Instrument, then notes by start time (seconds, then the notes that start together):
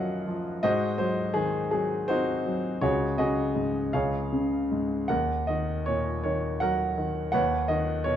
grand piano
Already playing: F#2 D#3 F3 F#3 A#4 D#5 F5 F#5
0.27 F3
0.63 G#2 F#4 C5 D#5
0.98 F#3 C5
1.34 D#3 G#4
1.71 F#3 G#4
2.08 C4 D#4 F#4 C5
2.46 F#3
2.81 C#2 F#4 G#4 C#5
3.18 C#3 F#4 G#4 D#5
3.55 G#2
3.93 C#2 G#4 C#5 F5
4.32 C#3
4.71 G#2
5.08 D#2 A#4 F#5
5.47 D#3 D#5
5.86 A#2 C#5
6.23 D#3 C#5
6.60 F#3 A#4 F#5
6.98 D#3
7.32 D#2 B4 C#5 F#5
7.68 D#3 D#5
8.04 B2 C#5